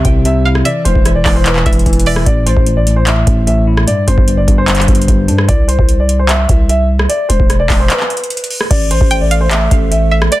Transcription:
0.00 0.05 C3 medium
0.00 0.23 E5 medium
0.05 0.63 C2 loud
0.05 0.24 C3 medium
0.05 kick loud
0.05 closed hi-hat medium
0.25 0.65 C3 loud
0.25 0.41 E5 loud
0.25 closed hi-hat medium
0.45 0.65 E4 medium
0.45 0.64 F5 medium
0.55 cross-stick medium
0.65 0.84 E3 medium
0.65 0.81 D5 medium
0.65 1.22 E5 loud
0.65 closed hi-hat medium
0.85 0.95 E1 loud
0.85 1.05 E3 medium
0.85 1.13 C5 medium
0.85 closed hi-hat medium
0.96 1.25 E1 loud
0.96 kick loud
1.05 1.25 E3 medium
1.05 cross-stick medium
1.05 closed hi-hat medium
1.15 1.32 D5 medium
1.26 1.64 E1 loud
1.26 1.45 E3 medium
1.26 1.63 D5 medium
1.26 kick loud
1.26 clap medium
1.26 open hi-hat soft
1.36 1.44 C5 medium
1.46 1.65 E3 medium
1.46 2.23 B4 medium
1.46 clap loud
1.46 closed hi-hat medium
1.56 clap medium
1.66 1.85 E1 loud
1.66 1.85 E3 medium
1.66 2.04 E5 medium
1.66 kick loud
1.66 closed hi-hat soft
1.73 closed hi-hat soft
1.79 closed hi-hat medium
1.86 2.25 E1 loud
1.86 2.26 E3 loud
1.86 kick loud
1.86 closed hi-hat medium
1.93 closed hi-hat medium
2.00 closed hi-hat medium
2.06 2.26 D5 medium
2.06 2.26 E5 medium
2.06 open hi-hat medium
2.16 cross-stick medium
2.26 2.55 A1 loud
2.26 2.45 A2 loud
2.26 2.42 D5 medium
2.26 kick loud
2.26 closed hi-hat medium
2.46 2.65 A2 medium
2.46 2.75 C5 medium
2.46 closed hi-hat medium
2.57 3.24 A1 loud
2.57 kick loud
2.66 2.86 A2 medium
2.66 closed hi-hat medium
2.77 2.93 D5 medium
2.87 3.06 A2 medium
2.87 closed hi-hat medium
2.96 3.05 C5 medium
3.07 3.26 A2 medium
3.07 3.45 E5 medium
3.07 clap loud
3.07 closed hi-hat medium
3.27 3.85 A1 loud
3.27 3.46 A2 medium
3.27 kick loud
3.27 closed hi-hat medium
3.47 3.88 A2 medium
3.47 3.63 E5 medium
3.47 closed hi-hat medium
3.67 3.87 E4 medium
3.77 cross-stick medium
3.87 4.06 G2 medium
3.87 4.03 D5 loud
3.87 closed hi-hat medium
4.07 4.17 G1 loud
4.07 4.26 G2 medium
4.07 4.36 C5 medium
4.07 closed hi-hat medium
4.18 4.47 G1 loud
4.18 kick loud
4.28 4.47 G2 medium
4.28 closed hi-hat medium
4.37 4.54 D5 medium
4.48 4.86 G1 loud
4.48 4.67 G2 medium
4.48 kick loud
4.48 closed hi-hat medium
4.58 4.66 C5 medium
4.68 4.87 G2 medium
4.68 5.44 C5 medium
4.68 clap loud
4.68 closed hi-hat medium
4.75 clap medium
4.75 closed hi-hat medium
4.81 closed hi-hat medium
4.88 5.07 G1 loud
4.88 5.07 G2 medium
4.88 kick loud
4.88 closed hi-hat medium
4.95 closed hi-hat medium
5.02 closed hi-hat medium
5.08 5.30 G1 loud
5.08 5.48 G2 medium
5.08 kick loud
5.08 closed hi-hat medium
5.28 5.48 G2 loud
5.28 5.48 D4 medium
5.28 closed hi-hat medium
5.38 cross-stick medium
5.48 5.78 C2 loud
5.48 5.64 D5 medium
5.48 kick loud
5.48 closed hi-hat medium
5.68 5.97 C5 medium
5.68 closed hi-hat medium
5.79 6.46 C2 loud
5.79 kick loud
5.89 closed hi-hat medium
6.00 6.16 D5 medium
6.09 closed hi-hat medium
6.19 6.27 C5 medium
6.29 6.67 E5 loud
6.29 clap loud
6.29 closed hi-hat medium
6.49 7.07 C2 loud
6.49 kick loud
6.49 closed hi-hat medium
6.69 6.86 E5 loud
6.69 closed hi-hat medium
6.99 cross-stick medium
7.09 7.25 D5 medium
7.09 closed hi-hat medium
7.29 7.39 E1 loud
7.29 7.58 C5 medium
7.29 closed hi-hat medium
7.40 7.69 E1 loud
7.40 kick loud
7.50 cross-stick medium
7.50 closed hi-hat medium
7.60 7.76 D5 medium
7.70 7.89 E1 loud
7.70 kick loud
7.70 clap loud
7.70 open hi-hat medium
7.80 7.88 C5 medium
7.90 8.67 B4 medium
7.90 clap loud
7.90 closed hi-hat medium
8.00 clap medium
8.10 closed hi-hat soft
8.17 closed hi-hat medium
8.24 closed hi-hat medium
8.30 closed hi-hat medium
8.37 closed hi-hat medium
8.44 closed hi-hat medium
8.50 open hi-hat medium
8.61 cross-stick medium
8.70 9.00 A1 loud
8.70 10.30 A3 medium
8.70 10.30 A4 medium
8.70 10.40 C5 medium
8.70 8.87 D5 medium
8.70 10.30 E5 medium
8.70 kick loud
8.70 closed hi-hat medium
8.70 crash loud
8.91 9.19 C5 medium
8.91 closed hi-hat medium
9.01 9.69 A1 loud
9.01 kick loud
9.11 9.30 G5 medium
9.11 closed hi-hat medium
9.21 9.37 D5 medium
9.31 9.50 F5 medium
9.31 closed hi-hat medium
9.41 9.49 C5 medium
9.51 9.89 E5 medium
9.51 clap loud
9.51 closed hi-hat medium
9.71 10.29 A1 loud
9.71 kick loud
9.71 closed hi-hat medium
9.91 10.07 E5 medium
9.91 closed hi-hat medium
10.11 10.31 E5 medium
10.22 cross-stick loud
10.32 10.40 G3 medium
10.32 10.40 G4 medium
10.32 10.40 D5 loud
10.32 closed hi-hat medium

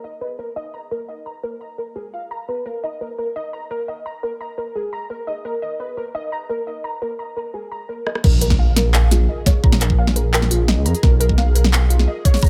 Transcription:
0.04 0.20 D#5 medium
0.21 0.37 B4 medium
0.39 0.55 A#4 medium
0.56 0.72 D#5 loud
0.74 0.90 A#5 medium
0.91 1.08 A#4 loud
1.09 1.24 D#5 medium
1.26 1.36 A#5 medium
1.43 1.54 A#4 loud
1.61 1.78 A#5 medium
1.78 1.94 A#4 medium
1.96 2.12 G#4 medium
2.14 2.30 F5 medium
2.31 2.47 A#5 medium
2.49 2.64 B4 medium
2.66 2.76 A#4 medium
2.84 2.99 D#5 medium
3.01 3.17 A#4 medium
3.18 3.34 A#4 medium
3.36 3.51 D#5 loud
3.53 3.69 A#5 medium
3.71 3.87 A#4 loud
3.88 4.04 D#5 medium
4.06 4.16 A#5 medium
4.23 4.33 A#4 loud
4.41 4.57 A#5 medium
4.58 4.74 A#4 medium
4.75 4.91 G#4 medium
4.93 5.08 A#5 medium
5.10 5.26 A#4 medium
5.27 5.43 D#5 medium
5.45 5.55 A#4 medium
5.62 5.78 D#5 medium
5.80 5.96 B4 medium
5.97 6.13 A#4 medium
6.15 6.30 D#5 loud
6.32 6.48 A#5 medium
6.49 6.66 A#4 loud
6.67 6.83 D#5 medium
6.84 6.94 A#5 medium
7.02 7.12 A#4 loud
7.19 7.36 A#5 medium
7.36 7.52 A#4 medium
7.54 7.70 G#4 medium
7.72 7.87 A#5 medium
7.89 8.05 A#4 medium
8.07 8.22 D#5 medium
8.07 cross-stick medium
8.15 cross-stick medium
8.24 9.28 A#1 loud
8.24 12.49 G#4 medium
8.24 8.41 A#4 medium
8.24 kick loud
8.24 crash loud
8.24 impact medium
8.41 8.57 A#4 loud
8.41 closed hi-hat medium
8.50 kick medium
8.50 snare medium
8.59 8.75 F5 medium
8.76 8.92 A#4 medium
8.76 snare medium
8.76 closed hi-hat medium
8.94 9.10 F5 medium
8.94 clap loud
9.11 9.27 F4 medium
9.11 snare medium
9.11 closed hi-hat medium
9.29 9.45 D#5 medium
9.46 9.63 C#5 loud
9.46 kick loud
9.46 snare medium
9.46 closed hi-hat medium
9.63 10.50 A#1 loud
9.63 9.80 A#5 medium
9.63 kick loud
9.72 snare medium
9.81 9.97 A#4 loud
9.81 clap medium
9.81 closed hi-hat medium
9.90 kick medium
9.98 10.15 F5 loud
10.07 snare medium
10.16 10.32 A#4 medium
10.16 closed hi-hat medium
10.33 10.49 A#4 medium
10.33 clap loud
10.42 snare medium
10.51 10.77 A#1 loud
10.51 10.66 F4 medium
10.51 closed hi-hat medium
10.68 10.84 D#5 medium
10.68 snare medium
10.77 10.87 C#2 medium
10.86 10.94 F2 loud
10.86 11.02 A#5 medium
10.86 closed hi-hat medium
10.95 closed hi-hat soft
11.03 12.07 B1 loud
11.03 11.19 A#4 medium
11.03 kick loud
11.03 snare medium
11.20 11.36 A#4 loud
11.20 closed hi-hat medium
11.29 kick medium
11.38 11.54 F5 medium
11.38 snare medium
11.55 11.71 A#4 medium
11.55 closed hi-hat medium
11.64 snare medium
11.73 11.89 F5 medium
11.73 clap loud
11.90 12.06 F4 medium
11.90 closed hi-hat medium
11.99 snare medium
12.08 12.23 D#5 medium
12.25 12.42 C#5 loud
12.25 kick loud
12.25 closed hi-hat medium
12.34 snare medium
12.34 closed hi-hat soft
12.37 closed hi-hat soft
12.39 closed hi-hat soft
12.41 12.49 B1 loud
12.41 12.49 A#5 medium
12.41 kick loud
12.41 closed hi-hat soft
12.44 closed hi-hat soft
12.46 closed hi-hat soft

